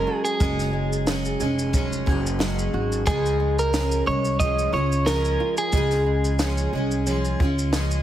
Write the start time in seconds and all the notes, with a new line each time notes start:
Already playing: F#3 G#3 C#4 G#4 A#4
0.07 F#4
0.25 G#4, shaker
0.40 F#1 F#3 G#3 C#4 G#4, kick, shaker
0.59 snare, shaker
0.73 G#3
0.93 shaker
1.07 F#3 G#3 C#4 G#4, snare, shaker
1.25 shaker
1.40 F1 G#3 C#4 G#4, shaker
1.59 shaker
1.73 F#3 G#3 C#4 G#4, kick, shaker
1.93 shaker
2.06 F#1 G#3 C#4 F#4 G#4, kick
2.27 shaker
2.39 F#3 G#3 C#4 G#4, snare, shaker
2.59 shaker
2.73 G#1 F#4
2.92 shaker
3.06 C#2 C#3 F3 G#3 C#4 G#4, kick, shaker
3.26 shaker
3.40 G#3
3.59 A#4, shaker
3.73 F3 G#3 C#4 G#4, snare, shaker
3.92 shaker
4.06 C2 G#3 C#4 G#4 C#5
4.25 shaker
4.40 F3 G#3 C#4 G#4 D#5, kick, shaker
4.59 shaker
4.72 C#2 G#3 C#4 F4 G#4 C#5
4.92 shaker
5.06 F3 G#3 C#4 G#4 A#4, snare, shaker
5.25 shaker
5.40 F4
5.57 G#4, shaker
5.72 C#2 C#3 F3 G#3 C#4 G#4, kick, shaker
5.91 snare, shaker
6.06 G#3
6.25 shaker
6.39 F3 G#3 C#4 G#4, snare, shaker
6.58 shaker
6.73 C2 G#3 C#4 G#4
6.91 shaker
7.07 F3 G#3 C#4 G#4, shaker
7.25 shaker
7.40 C#2 G#3 C#4 F4 G#4, kick
7.59 shaker
7.73 F3 G#3 C#4 G#4, snare, shaker
7.91 shaker